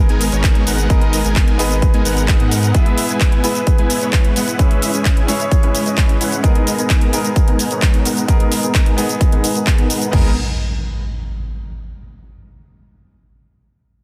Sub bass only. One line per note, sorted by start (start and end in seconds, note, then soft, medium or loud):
0.09 0.30 G#1 medium
0.32 0.65 G#1 medium
0.67 0.88 G#1 medium
0.90 1.22 G#1 loud
1.25 1.57 G#1 loud
1.59 1.92 G#1 medium
1.94 2.03 G#1 medium
2.05 2.38 G#1 medium
2.40 2.72 G#2 medium
10.13 10.35 G#1 loud